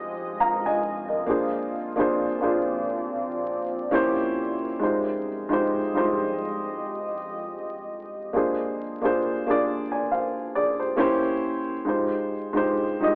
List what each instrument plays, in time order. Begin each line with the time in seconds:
Already playing: ambient pad F2 F3 G#3 F4 D#5, upright piano G3 G#3 D#4 F4 G4 C5 D#5
0.40 upright piano F5 A#5
0.66 upright piano D#5 G#5
1.09 upright piano A#4 D#5
1.26 ambient pad A#2 F3 C4 D5, upright piano A#3 D4 F4 G#4
1.30 upright piano C5
1.96 upright piano A#3 D4 F4 G#4
2.00 upright piano C5
2.40 upright piano A#3 D4 F4 G#4 C5
3.91 upright piano A#3 C#4 E4 G4 C5
4.80 ambient pad F2 F3 G#3 G4 D#5, upright piano G#3 D#4 F4 G4
4.84 upright piano C5
5.49 upright piano G#3 D#4 F4 G4
5.53 upright piano C5
5.93 upright piano G3 D#4 F4 G4 C5
6.00 upright piano G#3
8.33 upright piano A#3 D4 F4 G#4 C5
9.02 upright piano A#3 D4 F4 G#4 C5
9.47 upright piano A#3 D4 F4 G#4 D5
9.92 upright piano D5 G#5
10.12 upright piano C5 F5
10.55 upright piano G#4 D5
10.79 upright piano G4 C5
10.96 upright piano A#3 C#4 E4 G4 C5
11.85 ambient pad F2 F3 G#3 F4 D#5, upright piano G#3 D#4 F4 G4 C5
12.53 upright piano G#3 D#4 F4 G4
12.57 upright piano C5
12.99 upright piano G3 D#4 F4 G4 D#5
13.06 upright piano G#3